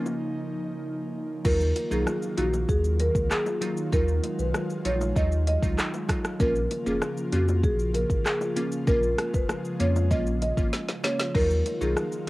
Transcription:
Already playing: C#3 F3 A#3 C#4 D#4 F4
0.06 high bongo, shaker
1.45 D#2 D#3 F#3 A#3 D#4 F4 A#4, kick, crash, shaker
1.61 shaker
1.76 closed hi-hat, high bongo, shaker
1.91 B1 F#3 D#4 F4 G#4, shaker
2.07 cross-stick, high bongo, shaker
2.22 shaker
2.37 A#1 F#3 D#4 F4 F#4, closed hi-hat, shaker
2.54 high bongo, shaker
2.69 D#2 G#4, kick, shaker
2.84 shaker
2.99 A#4, closed hi-hat, high bongo, shaker
3.15 C#2, kick, shaker
3.31 G#4, cross-stick, clap, shaker
3.46 high bongo, shaker
3.61 F#3 D#4 F4, closed hi-hat, low bongo, shaker
3.77 shaker
3.92 D#2 F#3 G#3 D#4 F4 A#4, kick, shaker
4.08 shaker
4.23 closed hi-hat, high bongo, shaker
4.39 B1 B4, shaker
4.54 cross-stick, high bongo, shaker
4.70 shaker
4.85 A#1 F#3 D#4 F4 C#5, closed hi-hat, shaker
5.01 high bongo, shaker
5.16 D#2 F#3 D#4 F4 D#5, kick, shaker
5.32 shaker
5.47 D#5, closed hi-hat, high bongo, shaker
5.62 C#2 F#3 D#4 F4, kick, shaker
5.78 cross-stick, clap, shaker
5.94 high bongo, shaker
6.09 F#3 D#4 F4, kick, cross-stick, closed hi-hat, low bongo, shaker
6.25 cross-stick, shaker
6.40 A#1 C#3 F3 A#3 C#4 F4 A#4, kick, shaker
6.56 shaker
6.71 closed hi-hat, high bongo, shaker
6.86 F1 A#3 C#4 F4 G#4, shaker
7.02 cross-stick, high bongo, shaker
7.17 shaker
7.32 F2 A#3 C#4 F4 F#4, closed hi-hat, shaker
7.48 high bongo, shaker
7.64 A#1 G#4, kick, shaker
7.79 shaker
7.94 A#4, closed hi-hat, high bongo, shaker
8.10 G#1, kick, shaker
8.25 G#4, cross-stick, clap, shaker
8.41 high bongo, shaker
8.56 A#3 C#4 F4, closed hi-hat, low bongo, shaker
8.72 shaker
8.87 A#1 G#3 A#3 C#4 F4 A#4, kick, shaker
9.03 shaker
9.18 cross-stick, closed hi-hat, high bongo, shaker
9.34 F1 B4, kick, shaker
9.49 cross-stick, high bongo, shaker
9.65 shaker
9.80 F2 A#3 C#4 F4 C#5, closed hi-hat, shaker
9.96 high bongo, shaker
10.11 A#1 A#3 C#4 F4 D#5, kick, shaker
10.27 shaker
10.42 D#5, closed hi-hat, high bongo, shaker
10.57 G#1 A#3 C#4 F4, kick, shaker
10.73 snare, shaker
10.89 snare, high bongo, shaker
11.03 A#3 C#4 F4 C#5, snare, closed hi-hat, low bongo, shaker
11.19 snare, shaker
11.34 D#2 D#3 F#3 A#3 D#4 F4 A#4, kick, crash
11.50 shaker
11.66 closed hi-hat, high bongo, shaker
11.81 B1 F#3 D#4 F4 G#4, shaker
11.97 cross-stick, high bongo, shaker
12.12 shaker

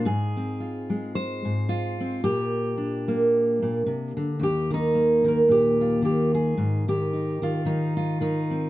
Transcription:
0.05 G#2 G#4
0.37 C4
0.60 F4
0.90 G#3
1.15 C5
1.45 G#2
1.69 F4
2.00 C4
2.24 A#2 G4
2.78 D4
3.08 A#3
3.62 A#2
3.86 C3
4.17 D3
4.39 D#2 G4
4.70 D#3 D#4
4.95 A#3
5.24 D#3 A#4
5.48 A#2 G4
5.81 F4
6.02 D#3 G4
6.34 G#4
6.57 G#2
6.88 D#3 G4
7.13 D#4
7.42 D#3 F4
7.65 D#3 D#4
7.97 F4
8.21 D#3 D#4
8.51 C4

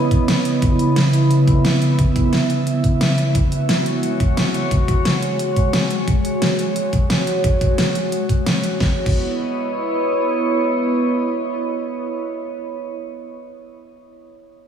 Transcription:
Already playing: C#3 B3 E4 D#5
0.11 kick, closed hi-hat
0.28 snare, closed hi-hat
0.45 closed hi-hat
0.62 E5, kick, closed hi-hat
0.79 closed hi-hat
0.96 snare, closed hi-hat
1.13 closed hi-hat
1.31 closed hi-hat
1.48 kick, closed hi-hat
1.65 snare, closed hi-hat
1.82 closed hi-hat
1.99 kick, closed hi-hat
2.16 kick, closed hi-hat
2.33 snare, closed hi-hat
2.50 closed hi-hat
2.67 closed hi-hat
2.84 kick, closed hi-hat
3.01 snare, closed hi-hat
3.18 closed hi-hat
3.35 G#3 F#4 C#5, kick, closed hi-hat
3.52 closed hi-hat
3.69 snare, closed hi-hat
3.86 closed hi-hat
4.03 closed hi-hat
4.20 kick, closed hi-hat
4.37 snare, closed hi-hat
4.54 closed hi-hat
4.71 kick, closed hi-hat
4.88 kick, closed hi-hat
5.05 snare, closed hi-hat
5.22 closed hi-hat
5.39 closed hi-hat
5.56 kick, closed hi-hat
5.73 snare, closed hi-hat
5.90 closed hi-hat
6.08 kick, closed hi-hat
6.25 closed hi-hat
6.42 snare, closed hi-hat
6.59 closed hi-hat
6.76 closed hi-hat
6.93 kick, closed hi-hat
7.10 snare, closed hi-hat
7.27 closed hi-hat
7.44 kick, closed hi-hat
7.61 kick, closed hi-hat
7.78 snare, closed hi-hat
7.95 closed hi-hat
8.12 closed hi-hat
8.29 kick, closed hi-hat
8.46 snare, closed hi-hat
8.64 closed hi-hat
8.80 B3 E4 C#5 D#5, kick, snare
9.06 kick, crash

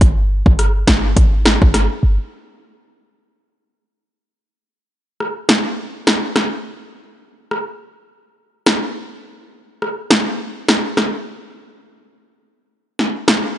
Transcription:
0.01 G1, kick, closed hi-hat
0.46 G1, kick
0.59 cross-stick, closed hi-hat
0.87 G1, kick, cross-stick, snare
1.17 G#1, kick, closed hi-hat
1.46 cross-stick, snare
1.62 G1, kick
1.74 cross-stick, snare, closed hi-hat
2.03 G1
5.20 cross-stick
5.49 cross-stick, snare
6.07 cross-stick, snare
6.36 cross-stick, snare
7.51 cross-stick
8.66 cross-stick, snare
9.82 cross-stick
10.11 cross-stick, snare
10.69 cross-stick, snare
10.97 cross-stick, snare
12.99 snare
13.28 cross-stick, snare

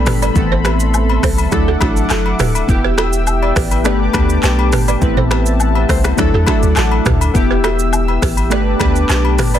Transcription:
Already playing: G3 A3 B3 D4 A4 D5 G5 B5
0.06 G1 G4 B4, finger snap, cross-stick, mid tom, open hi-hat, shaker
0.22 B4 D5, high agogo, shaker
0.34 A1 E3 A3 B3 C4 A4 E5 C6, kick, shaker
0.52 A4 C5
0.65 G4 B4, finger snap, cross-stick, high agogo, shaker
0.80 shaker
0.94 low woodblock, shaker
1.09 high agogo
1.23 C2 A4 C5, finger snap, kick, cross-stick, open hi-hat, shaker
1.38 high agogo, shaker
1.51 D2 F#3 A3 D4 E4 A4 F#5 D6, finger snap, kick, cross-stick, shaker
1.68 F#4 A4
1.80 A1 F#3 A3 D4 E4 F#4 A4, finger snap, kick, cross-stick, high agogo, shaker
1.97 shaker
2.10 F#1 F#4 A4, clap, low woodblock, shaker
2.26 high agogo
2.39 D1 G4 B4, finger snap, cross-stick, mid tom, open hi-hat, shaker
2.55 high agogo, shaker
2.67 E1 B3 E4 G4 G5 E6, kick, shaker
2.85 G4 B4
2.98 F#4 A4, finger snap, cross-stick, high agogo, shaker
3.13 shaker
3.27 E5, low woodblock, shaker
3.42 D5, high agogo
3.56 A1 G4 B4, finger snap, kick, cross-stick, open hi-hat, shaker
3.71 B4, high agogo, shaker
3.84 G1 A3 B3 D4 G4 B4 D5 A5 D6, finger snap, cross-stick, shaker
4.13 D2 A3 B3 D4 G4 B4, finger snap, kick, cross-stick, high agogo, shaker
4.30 shaker
4.43 B1 G4 B4, clap, low woodblock, shaker
4.59 high agogo
4.72 G1 G4 B4, finger snap, cross-stick, mid tom, open hi-hat, shaker
4.88 B4 D5, high agogo, shaker
5.01 A1 A3 B3 C4 E4 B4 E5 A5, kick, shaker
5.17 A4 C5, mid tom
5.31 G4 B4, finger snap, cross-stick, high agogo, shaker
5.46 shaker
5.60 F#5, low woodblock, shaker
5.75 E5, high agogo
5.89 C2 A4 C5, finger snap, kick, cross-stick, open hi-hat, shaker
6.04 B4, finger snap, cross-stick, high agogo, shaker
6.17 D2 F#3 A3 D4 E4 A4 E5 F#5 D6, finger snap, kick, cross-stick, shaker
6.33 E2 F#4 A4
6.46 F#3 A3 D4 E4 F#4 A4 E5, finger snap, kick, cross-stick, high agogo, shaker
6.63 D2, shaker
6.76 A1 F#4 A4 A5, clap, low woodblock, shaker
6.91 high agogo
7.06 D2 G4 B4, finger snap, kick, cross-stick, mid tom, shaker
7.21 high agogo, shaker
7.34 E1 B3 E4 G4 G5 E6, kick, shaker
7.51 G4 B4
7.64 F#4 A4, finger snap, cross-stick, high agogo, shaker
7.79 shaker
7.93 low woodblock, shaker
8.08 high agogo
8.22 A1 G4 B4, finger snap, kick, cross-stick, open hi-hat, shaker
8.37 high agogo, shaker
8.50 G1 A3 B3 D4 G4 B4 D5 A5 D6, finger snap, cross-stick, shaker
8.79 D2 A3 B3 D4 G4 B4, finger snap, kick, cross-stick, high agogo, shaker
8.96 shaker
9.09 B1 G4 B4, clap, low woodblock, shaker
9.25 high agogo
9.38 G1 G4 B4, finger snap, cross-stick, mid tom, open hi-hat, shaker
9.54 B4 D5, high agogo, shaker

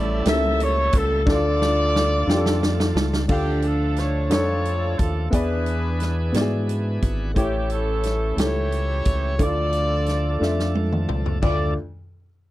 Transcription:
Already playing: A1 A2 C#3 G3 A3 C#4 E4 A4 D5
0.25 C#2 G3 A3 A#3 E4 A4 E5, snare, closed hi-hat
0.33 C#4
0.60 C#5, closed hi-hat
0.93 C#2 A4, kick, closed hi-hat
1.26 D2 D3 A3 D4 E4 F4 A4 D5, kick, snare
1.34 F4
1.62 snare
1.96 snare
2.27 F2 D4 F4 G4, snare
2.37 A4
2.46 snare
2.63 snare
2.80 snare
2.95 C#2, snare
3.13 snare
3.28 D2 D3 F3 A3 D4 F4 G4 A4 F5, kick, crash
3.62 A4, closed hi-hat
3.96 C#5, snare, closed hi-hat
4.30 F2 D4 F4 A4 C#5, snare, closed hi-hat
4.65 closed hi-hat
4.98 D#2 A4, kick, closed hi-hat
5.30 E2 E3 B3 D4 E4 G#4 B4 D5, kick, closed hi-hat
5.35 G#4
5.66 closed hi-hat
6.00 snare, closed hi-hat
6.32 G#2 B3 E4 F#4 D5, snare, closed hi-hat
6.41 G#4
6.67 B4, closed hi-hat
7.02 G#1 F#5, kick, closed hi-hat
7.34 A1 A2 E3 A3 C#4 E4 G4 C#5, kick, closed hi-hat
7.70 C#4 E4 A4, closed hi-hat
8.03 snare, closed hi-hat
8.36 C#2 A3 E4 G4 A4, snare, closed hi-hat
8.40 E4 G4 C#5
8.72 closed hi-hat
9.05 C#2, kick, closed hi-hat
9.38 D2 D3 F3 A3 D4 E4 F4 G#4 A4 D5, kick, closed hi-hat
9.45 F4 A4
9.73 closed hi-hat
10.06 snare, closed hi-hat
10.39 F2 A3 D4 F4 E5, snare
10.60 snare
10.75 high tom
10.92 mid tom
11.09 C#2, mid tom
11.26 floor tom
11.42 D2 F3 A3 D4 F4 A4 D5, kick, floor tom, china

